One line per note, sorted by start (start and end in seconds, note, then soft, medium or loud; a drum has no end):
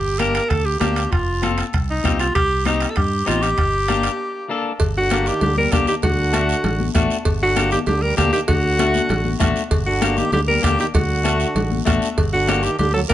0.00 0.39 G1 medium
0.00 0.20 G4 medium
0.19 0.41 A#3 medium
0.19 0.41 D4 medium
0.19 0.42 G4 medium
0.19 0.51 A#4 loud
0.19 bombo rim medium
0.19 high conga medium
0.19 high timbale medium
0.19 short guiro medium
0.35 bombo rim medium
0.35 high timbale medium
0.35 short guiro medium
0.49 0.75 D2 medium
0.49 0.67 A4 loud
0.49 bombo low medium
0.49 bombo rim medium
0.49 high conga soft
0.49 high timbale medium
0.49 long guiro medium
0.65 0.79 G4 medium
0.80 1.06 D2 medium
0.80 1.02 A#3 medium
0.80 1.03 D4 medium
0.80 1.12 G4 medium
0.80 1.03 G4 medium
0.80 bombo rim medium
0.80 high conga medium
0.80 high timbale medium
0.80 low timbale medium
0.80 short guiro medium
0.96 bombo rim medium
0.96 high timbale medium
0.96 short guiro medium
1.11 1.61 F1 loud
1.11 1.58 F4 medium
1.11 bombo low medium
1.11 bombo rim medium
1.11 high conga soft
1.11 high timbale medium
1.11 long guiro medium
1.42 1.64 C4 medium
1.42 1.64 F4 medium
1.42 1.65 A4 medium
1.42 bombo rim medium
1.42 high conga medium
1.42 high timbale medium
1.42 short guiro medium
1.58 bombo rim medium
1.58 high timbale medium
1.58 short guiro medium
1.73 1.99 C2 medium
1.73 bombo low medium
1.73 bombo rim medium
1.73 high conga soft
1.73 high timbale medium
1.73 long guiro medium
1.90 2.18 D#4 medium
2.04 2.29 C2 medium
2.04 2.26 C4 medium
2.04 2.26 F4 medium
2.04 2.26 G4 medium
2.04 bombo low medium
2.04 bombo rim medium
2.04 high conga medium
2.04 high timbale medium
2.04 short guiro medium
2.19 2.34 F4 medium
2.19 bombo rim medium
2.19 high timbale medium
2.19 short guiro medium
2.35 2.85 C2 loud
2.35 2.64 G4 loud
2.35 bombo low medium
2.35 bombo rim medium
2.35 high conga soft
2.35 high timbale medium
2.35 long guiro medium
2.65 2.87 C4 medium
2.65 2.91 D#4 medium
2.65 2.88 D#4 medium
2.65 2.88 G4 medium
2.65 bombo rim medium
2.65 high conga medium
2.65 high timbale medium
2.65 short guiro medium
2.80 bombo rim medium
2.80 high timbale medium
2.80 short guiro medium
2.90 2.98 A4 medium
2.96 3.22 G2 loud
2.96 3.27 G4 medium
2.96 bombo low medium
2.96 bombo rim medium
2.96 high conga soft
2.96 high timbale medium
2.96 long guiro medium
3.26 3.52 A1 medium
3.26 3.48 C4 medium
3.26 3.48 D#4 medium
3.26 3.43 F4 medium
3.26 3.49 G4 medium
3.26 bombo rim medium
3.26 high conga medium
3.26 high timbale medium
3.26 short guiro medium
3.42 4.49 G4 medium
3.42 bombo rim medium
3.42 high timbale medium
3.42 short guiro medium
3.58 4.07 G1 medium
3.58 bombo low medium
3.58 bombo rim medium
3.58 high conga soft
3.58 high timbale medium
3.58 long guiro medium
3.88 4.10 A#3 medium
3.88 4.10 D4 medium
3.88 4.10 G4 medium
3.88 bombo rim medium
3.88 high conga medium
3.88 high timbale medium
3.88 short guiro medium
4.03 bombo rim medium
4.03 high timbale medium
4.03 short guiro medium
4.49 4.71 A#3 medium
4.49 4.72 D4 medium
4.49 4.72 A4 medium
4.80 5.30 G1 loud
4.80 bombo low medium
4.80 cowbell loud
4.80 long guiro medium
4.96 5.29 D3 medium
4.96 5.29 F#4 loud
4.96 high conga soft
5.10 5.33 A#3 medium
5.10 5.33 D4 medium
5.10 5.33 G4 medium
5.10 bombo rim medium
5.10 cowbell medium
5.10 high conga medium
5.10 short guiro medium
5.26 5.42 D#3 medium
5.26 5.42 G4 medium
5.26 short guiro medium
5.41 5.66 D2 medium
5.41 5.56 D3 medium
5.41 5.56 G4 medium
5.41 cowbell medium
5.41 high conga soft
5.41 low conga medium
5.41 long guiro medium
5.57 5.74 G3 medium
5.57 5.74 A#4 loud
5.57 high conga medium
5.72 5.85 C2 medium
5.72 5.87 D3 medium
5.72 5.94 A#3 medium
5.72 5.94 D4 medium
5.72 5.88 G4 medium
5.72 5.94 G4 medium
5.72 bombo low medium
5.72 bombo rim medium
5.72 cowbell medium
5.72 high conga medium
5.72 short guiro medium
5.87 5.95 D#3 medium
5.87 5.95 G4 medium
5.87 short guiro medium
6.02 6.52 D2 loud
6.02 6.91 D3 medium
6.02 6.91 F#4 medium
6.02 bombo low medium
6.02 cowbell loud
6.02 low conga medium
6.02 long guiro medium
6.18 high conga soft
6.33 6.55 A3 medium
6.33 6.55 D4 medium
6.33 6.55 F#4 medium
6.33 bombo rim medium
6.33 cowbell medium
6.33 high conga medium
6.33 short guiro medium
6.49 short guiro medium
6.64 6.89 A1 medium
6.64 bombo rim medium
6.64 cowbell medium
6.64 high conga soft
6.64 low conga medium
6.64 long guiro medium
6.80 high conga medium
6.95 7.08 A1 medium
6.95 7.16 A3 medium
6.95 7.17 D4 medium
6.95 7.17 F#4 medium
6.95 bombo low medium
6.95 bombo rim medium
6.95 cowbell medium
6.95 high conga medium
6.95 low timbale medium
6.95 short guiro medium
7.11 short guiro medium
7.25 7.75 G1 loud
7.25 bombo low medium
7.25 cowbell loud
7.25 long guiro medium
7.41 7.71 D3 medium
7.41 7.70 F#4 loud
7.41 high conga soft
7.56 7.78 A#3 medium
7.56 7.78 D4 medium
7.56 7.78 G4 medium
7.56 bombo rim medium
7.56 cowbell medium
7.56 high conga medium
7.56 short guiro medium
7.71 7.80 D#3 medium
7.71 7.79 G4 medium
7.71 high conga medium
7.71 short guiro medium
7.86 8.12 D2 medium
7.86 8.04 D3 medium
7.86 8.04 G4 medium
7.86 cowbell medium
7.86 high conga soft
7.86 low conga medium
7.86 long guiro medium
8.02 8.18 G3 medium
8.02 8.16 A#4 loud
8.17 8.30 D2 medium
8.17 8.32 D3 medium
8.17 8.39 A#3 medium
8.17 8.39 D4 medium
8.17 8.32 G4 medium
8.17 8.39 G4 medium
8.17 bombo low medium
8.17 bombo rim medium
8.17 cowbell medium
8.17 high conga medium
8.17 short guiro medium
8.33 8.40 D#3 medium
8.33 8.40 G4 medium
8.33 short guiro medium
8.48 8.98 D2 loud
8.48 9.37 D3 medium
8.48 9.37 F#4 loud
8.48 bombo low medium
8.48 cowbell loud
8.48 long guiro medium
8.64 high conga soft
8.79 9.01 A3 medium
8.79 9.01 D4 medium
8.79 9.01 F#4 medium
8.79 bombo rim medium
8.79 cowbell medium
8.79 high conga loud
8.79 short guiro medium
8.94 high conga medium
8.94 short guiro medium
9.09 9.34 A1 medium
9.09 bombo rim medium
9.09 cowbell medium
9.09 high conga soft
9.09 low conga medium
9.09 long guiro medium
9.25 high conga medium
9.40 9.53 A1 medium
9.40 9.62 A3 medium
9.40 9.62 D4 medium
9.40 9.62 F#4 medium
9.40 bombo low medium
9.40 bombo rim medium
9.40 cowbell medium
9.40 high conga medium
9.40 low conga medium
9.40 low timbale medium
9.40 short guiro medium
9.56 short guiro medium
9.71 10.21 G1 loud
9.71 bombo low medium
9.71 cowbell loud
9.71 long guiro medium
9.86 10.19 D3 medium
9.86 10.19 F#4 medium
9.86 high conga soft
10.01 10.23 A#3 medium
10.01 10.23 D4 medium
10.01 10.24 G4 medium
10.01 bombo rim medium
10.01 cowbell medium
10.01 high conga loud
10.01 short guiro medium
10.17 10.32 D#3 medium
10.17 10.33 G4 medium
10.17 high conga medium
10.17 short guiro medium
10.32 10.57 D2 medium
10.32 10.40 D3 medium
10.32 10.40 G4 medium
10.32 cowbell medium
10.32 high conga soft
10.32 low conga medium
10.32 long guiro medium
10.47 10.62 G3 medium
10.47 10.62 A#4 loud
10.47 high conga medium
10.62 10.76 D2 medium
10.62 10.78 D3 medium
10.62 10.84 A#3 medium
10.62 10.85 D4 medium
10.62 10.85 G4 medium
10.62 10.78 G4 medium
10.62 bombo low medium
10.62 bombo rim medium
10.62 cowbell medium
10.62 high conga medium
10.62 short guiro medium
10.79 10.86 D#3 medium
10.79 10.87 G4 medium
10.79 short guiro medium
10.94 11.44 D2 loud
10.94 11.83 D3 medium
10.94 11.83 F#4 medium
10.94 bombo low medium
10.94 cowbell loud
10.94 low conga medium
10.94 long guiro medium
11.10 high conga soft
11.24 11.46 A3 medium
11.24 11.46 D4 medium
11.24 11.47 F#4 medium
11.24 bombo rim medium
11.24 cowbell medium
11.24 high conga medium
11.24 short guiro medium
11.40 short guiro medium
11.55 11.80 A1 loud
11.55 cowbell medium
11.55 high conga soft
11.55 low conga medium
11.55 long guiro medium
11.72 high conga medium
11.85 11.99 A1 medium
11.85 12.08 A3 medium
11.85 12.08 D4 medium
11.85 12.08 F#4 medium
11.85 bombo low medium
11.85 bombo rim medium
11.85 cowbell medium
11.85 high conga medium
11.85 low timbale medium
11.85 short guiro medium
12.02 short guiro medium
12.18 12.67 G1 loud
12.18 bombo low medium
12.18 cowbell loud
12.18 long guiro medium
12.33 12.64 D3 medium
12.33 12.65 F#4 medium
12.33 high conga soft
12.47 12.69 A#3 medium
12.47 12.70 D4 medium
12.47 12.70 G4 medium
12.47 bombo rim medium
12.47 cowbell medium
12.47 high conga medium
12.47 short guiro medium
12.63 12.78 D#3 medium
12.63 12.78 G4 medium
12.63 short guiro medium
12.79 13.04 D2 medium
12.79 12.93 D3 medium
12.79 12.93 G4 medium
12.79 cowbell medium
12.79 high conga soft
12.79 low conga medium
12.79 long guiro medium
12.94 13.01 F#3 medium
12.94 13.01 A4 loud
13.09 13.14 D2 medium
13.09 13.14 G3 medium
13.09 13.14 A#3 medium
13.09 13.14 D4 medium
13.09 13.14 G4 medium
13.09 13.14 A#4 loud
13.09 bombo low medium
13.09 bombo rim medium
13.09 cowbell medium
13.09 high conga medium
13.09 short guiro medium